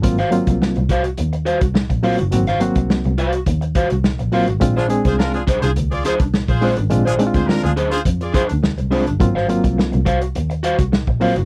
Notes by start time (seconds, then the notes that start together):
0.02 G#1 F#3 A#3 C4 F4, muted clean electric guitar stroke, kick, closed hi-hat
0.18 F#4 C5 F5, snare, closed hi-hat
0.31 F#3 A#3 C4 F4, muted clean electric guitar stroke, closed hi-hat
0.47 C2, muted clean electric guitar stroke, kick, closed hi-hat
0.61 C2, muted clean electric guitar stroke, snare
0.75 C2, muted clean electric guitar stroke, closed hi-hat
0.89 F#4 C5 F5, kick, closed hi-hat
1.04 muted clean electric guitar stroke, closed hi-hat
1.17 D#2, muted clean electric guitar stroke, closed hi-hat
1.33 muted clean electric guitar stroke, closed hi-hat
1.45 F#4 C5 F5, closed hi-hat
1.60 C2, muted clean electric guitar stroke, kick, closed hi-hat
1.74 A#1, muted clean electric guitar stroke, snare
1.90 A#1, muted clean electric guitar stroke, kick, closed hi-hat
2.03 F#3 A#3 C4 F4 F#4 C5 F5, open hi-hat
2.18 F#1, muted clean electric guitar stroke, closed hi-hat
2.32 G#1 F#3 A#3 C4 F#4, muted clean electric guitar stroke, closed hi-hat
2.47 F#4 C5 F5, snare, closed hi-hat
2.60 F#3 A#3 C4 F#4, muted clean electric guitar stroke, closed hi-hat
2.75 C2, muted clean electric guitar stroke, kick, closed hi-hat
2.90 C2, muted clean electric guitar stroke, snare
3.04 C2, muted clean electric guitar stroke, closed hi-hat
3.18 F#4 C5 F5, closed hi-hat
3.33 muted clean electric guitar stroke, closed hi-hat
3.46 D#2, muted clean electric guitar stroke, kick, closed hi-hat
3.61 muted clean electric guitar stroke, closed hi-hat
3.75 F#4 C5 F5, kick, closed hi-hat
3.90 C2, muted clean electric guitar stroke, closed hi-hat
4.04 A#1, snare
4.19 A#1, muted clean electric guitar stroke, closed hi-hat
4.32 F#3 A#3 C4 F4 F#4 C5 F5, open hi-hat
4.47 G#1, muted clean electric guitar stroke, closed hi-hat
4.60 A#1 G#3 C4 D4 F4, muted clean electric guitar stroke, kick, closed hi-hat
4.76 D4 F4 G#4 C5, snare
4.89 G#3 C4 D4 G#4, muted clean electric guitar stroke, closed hi-hat
5.05 C2 F4 G#4 C5, muted clean electric guitar stroke, kick, closed hi-hat
5.19 D4 F4 A#4, muted clean electric guitar stroke, snare
5.34 D4 F4 G#4, muted clean electric guitar stroke, closed hi-hat
5.47 C2 D4 G#4 C5, kick, closed hi-hat
5.62 C2 F4 G#4 C5, muted clean electric guitar stroke, closed hi-hat
5.76 D2, muted clean electric guitar stroke, closed hi-hat
5.91 F4 G#4 D5, muted clean electric guitar stroke, closed hi-hat
6.05 D4 F4 G#4 C5, closed hi-hat
6.20 C2, muted clean electric guitar stroke, kick, closed hi-hat
6.33 A#1, muted clean electric guitar stroke, snare
6.48 A#1 F4 G#4 C5, muted clean electric guitar stroke, kick, closed hi-hat
6.61 G#3 C4 D4 F4 G#4 C5, open hi-hat
6.76 G#1, muted clean electric guitar stroke, closed hi-hat
6.90 A#1 G#3 C4 D4 F4, muted clean electric guitar stroke, closed hi-hat
7.05 D4 F4 G#4 C5
7.19 G#3 C4 D4 D#4, muted clean electric guitar stroke, closed hi-hat
7.27 F4
7.34 D2 F4 G#4 C5, muted clean electric guitar stroke, kick, closed hi-hat
7.47 D2 D4 F4 A#4, muted clean electric guitar stroke, snare
7.63 D2 D4 F4 G#4, muted clean electric guitar stroke, closed hi-hat
7.76 D4 G#4 C5, closed hi-hat
7.92 F4 G#4 C5, muted clean electric guitar stroke, closed hi-hat
8.05 F2, muted clean electric guitar stroke, kick, closed hi-hat
8.21 F4 G#4 D5, muted clean electric guitar stroke, closed hi-hat
8.33 D4 F4 G#4 C5, kick, closed hi-hat
8.49 D2, muted clean electric guitar stroke, closed hi-hat
8.63 C2, muted clean electric guitar stroke, snare
8.78 C2, muted clean electric guitar stroke, closed hi-hat
8.91 G#3 C4 D4 F4 G#4 C5, open hi-hat
9.07 G1, muted clean electric guitar stroke, closed hi-hat
9.20 G#1 F#3 A#3 C4 F4, muted clean electric guitar stroke, kick, closed hi-hat
9.35 F#4 C5 F5, snare
9.48 F#3 A#3 C4 F4, muted clean electric guitar stroke, closed hi-hat
9.64 C2, muted clean electric guitar stroke, kick, closed hi-hat
9.78 C2, muted clean electric guitar stroke, snare
9.92 C2, muted clean electric guitar stroke, closed hi-hat
10.05 F#4 C5 F5, kick, closed hi-hat
10.21 muted clean electric guitar stroke, closed hi-hat
10.35 D#2, muted clean electric guitar stroke, closed hi-hat
10.50 muted clean electric guitar stroke, closed hi-hat
10.63 F#4 C5 F5, closed hi-hat
10.79 C2, muted clean electric guitar stroke, kick, closed hi-hat
10.92 A#1, muted clean electric guitar stroke, snare
11.07 A#1, muted clean electric guitar stroke, kick
11.20 F#3 A#3 C4 F4 F#4 C5 F5, open hi-hat
11.36 F#1, muted clean electric guitar stroke, closed hi-hat